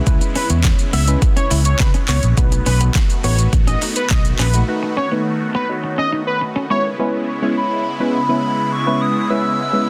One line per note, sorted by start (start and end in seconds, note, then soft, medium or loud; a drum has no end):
0.00 2.34 C#3 medium
0.00 2.34 G#3 medium
0.00 6.66 B3 medium
0.00 2.34 E4 medium
0.07 0.18 C#2 loud
0.07 0.37 G#3 medium
0.07 0.37 C#4 medium
0.07 0.37 E4 medium
0.07 0.37 B4 loud
0.07 kick loud
0.07 closed hi-hat medium
0.07 shaker medium
0.21 muted clean electric guitar stroke soft
0.21 closed hi-hat medium
0.21 shaker medium
0.35 0.44 C#4 medium
0.35 0.48 B4 medium
0.35 open hi-hat medium
0.35 shaker soft
0.50 0.72 E2 medium
0.50 0.91 G#3 medium
0.50 0.58 B3 medium
0.50 0.91 C#4 medium
0.50 0.91 E4 medium
0.50 0.91 C#5 medium
0.50 closed hi-hat medium
0.50 shaker medium
0.64 kick loud
0.64 snare medium
0.64 clap loud
0.64 clap medium
0.64 closed hi-hat medium
0.64 shaker medium
0.79 closed hi-hat medium
0.79 shaker medium
0.93 1.15 C#2 medium
0.93 1.02 B3 medium
0.93 1.06 E5 medium
0.93 open hi-hat medium
0.93 shaker medium
1.07 1.89 G#3 medium
1.07 1.89 C#4 medium
1.07 1.89 E4 medium
1.07 1.89 B4 medium
1.07 closed hi-hat medium
1.07 shaker medium
1.22 muted clean electric guitar stroke soft
1.22 kick loud
1.22 closed hi-hat medium
1.22 shaker medium
1.36 1.45 C#4 medium
1.36 1.49 C#5 medium
1.36 closed hi-hat soft
1.36 shaker soft
1.51 1.73 C#2 medium
1.51 1.59 E4 medium
1.51 clap medium
1.51 open hi-hat medium
1.51 shaker medium
1.65 1.78 C#5 medium
1.65 closed hi-hat medium
1.65 shaker medium
1.80 1.91 C#3 medium
1.80 1.92 B4 medium
1.80 muted clean electric guitar stroke soft
1.80 kick loud
1.80 snare medium
1.80 clap loud
1.80 clap medium
1.80 closed hi-hat medium
1.80 shaker medium
1.94 2.03 C#4 medium
1.94 closed hi-hat soft
1.94 shaker soft
2.09 2.20 C#2 medium
2.09 2.17 B3 medium
2.09 2.21 C#5 medium
2.09 clap medium
2.09 open hi-hat medium
2.09 shaker medium
2.23 2.34 A#1 medium
2.23 closed hi-hat medium
2.23 shaker medium
2.37 2.59 B1 loud
2.37 6.66 D#3 medium
2.37 2.99 A3 medium
2.37 6.66 A3 medium
2.37 2.99 D#4 medium
2.37 2.99 F#4 medium
2.37 6.66 F#4 medium
2.37 2.99 B4 loud
2.37 kick loud
2.37 closed hi-hat medium
2.37 shaker medium
2.52 muted clean electric guitar stroke soft
2.52 closed hi-hat medium
2.52 shaker medium
2.66 2.88 B1 loud
2.66 2.75 C#4 medium
2.66 2.79 B4 medium
2.66 open hi-hat medium
2.66 shaker medium
2.81 2.89 B3 medium
2.81 closed hi-hat soft
2.81 shaker medium
2.95 kick loud
2.95 snare loud
2.95 clap medium
2.95 clap loud
2.95 closed hi-hat medium
2.95 shaker medium
3.10 closed hi-hat medium
3.10 shaker medium
3.24 3.46 A1 medium
3.24 4.05 A3 medium
3.24 3.33 B3 medium
3.24 4.06 D#4 medium
3.24 4.06 F#4 medium
3.24 4.06 B4 medium
3.24 3.37 C#5 medium
3.24 open hi-hat medium
3.24 shaker medium
3.38 closed hi-hat soft
3.38 shaker medium
3.53 3.75 A1 medium
3.53 muted clean electric guitar stroke soft
3.53 kick loud
3.53 closed hi-hat medium
3.53 shaker medium
3.67 3.76 C#4 medium
3.67 3.80 D#5 medium
3.67 closed hi-hat soft
3.67 shaker soft
3.82 3.90 D#4 medium
3.82 clap medium
3.82 open hi-hat medium
3.82 shaker medium
3.96 4.09 B4 medium
3.96 closed hi-hat medium
3.96 shaker medium
4.10 4.32 B1 medium
4.10 4.23 D#5 medium
4.10 kick loud
4.10 snare medium
4.10 clap loud
4.10 clap medium
4.10 closed hi-hat medium
4.10 shaker medium
4.25 closed hi-hat soft
4.25 shaker soft
4.39 4.61 A#1 loud
4.39 4.48 C#4 medium
4.39 4.52 B4 medium
4.39 clap medium
4.39 open hi-hat medium
4.39 shaker medium
4.54 4.64 A3 medium
4.54 4.64 D#4 medium
4.54 4.64 F#4 medium
4.54 4.64 B4 medium
4.54 closed hi-hat medium
4.54 shaker medium
4.68 4.99 A3 medium
4.68 4.99 D#4 medium
4.68 4.99 F#4 medium
4.68 4.99 B4 loud
4.83 muted clean electric guitar stroke soft
4.97 5.06 C#4 medium
4.97 5.10 C#5 medium
5.11 5.52 A3 medium
5.11 5.20 B3 medium
5.11 5.52 D#4 medium
5.11 5.52 F#4 medium
5.11 5.52 B4 medium
5.55 5.63 B3 medium
5.55 5.67 B4 medium
5.69 6.51 A3 medium
5.69 6.51 D#4 medium
5.69 6.51 F#4 medium
5.69 6.51 C#5 medium
5.84 muted clean electric guitar stroke soft
5.98 6.07 C#4 medium
5.98 6.11 D#5 medium
6.12 6.21 D#4 medium
6.27 6.39 B4 medium
6.41 muted clean electric guitar stroke soft
6.56 6.64 C#4 medium
6.70 6.98 C#3 medium
6.70 6.93 G#3 medium
6.70 6.98 G#3 medium
6.70 6.79 B3 medium
6.70 6.98 B3 medium
6.70 6.93 C#4 medium
6.70 6.98 E4 medium
6.70 6.93 E4 medium
6.70 6.93 B4 medium
6.70 6.83 C#5 medium
6.99 9.90 C#3 medium
6.99 9.90 G#3 medium
6.99 7.30 G#3 medium
6.99 9.90 B3 medium
6.99 7.30 B3 medium
6.99 7.30 C#4 medium
6.99 9.90 E4 medium
6.99 7.30 E4 medium
6.99 7.30 B4 loud
7.42 7.83 G#3 medium
7.42 7.83 B3 medium
7.42 7.83 C#4 medium
7.42 7.83 E4 medium
7.42 7.83 C#5 medium
7.57 8.11 B5 medium
8.00 8.20 G#3 medium
8.00 8.20 B3 medium
8.00 8.20 C#4 medium
8.00 8.21 E4 medium
8.00 8.21 B4 medium
8.15 8.68 B5 loud
8.29 8.70 G#3 medium
8.29 8.70 B3 medium
8.29 8.70 C#4 medium
8.29 8.70 E4 medium
8.29 8.70 B4 medium
8.72 9.03 C#6 loud
8.86 9.17 G#3 medium
8.86 9.17 B3 medium
8.86 9.17 C#4 medium
8.86 9.17 E4 medium
8.86 9.17 B4 medium
9.01 9.31 D#6 loud
9.30 9.60 G#3 medium
9.30 9.60 B3 medium
9.30 9.60 C#4 medium
9.30 9.61 E4 medium
9.30 9.61 B4 medium
9.30 9.90 E6 loud
9.73 9.90 G#3 medium
9.73 9.90 B3 medium
9.73 9.90 C#4 medium
9.73 9.90 E4 medium
9.73 9.90 B4 medium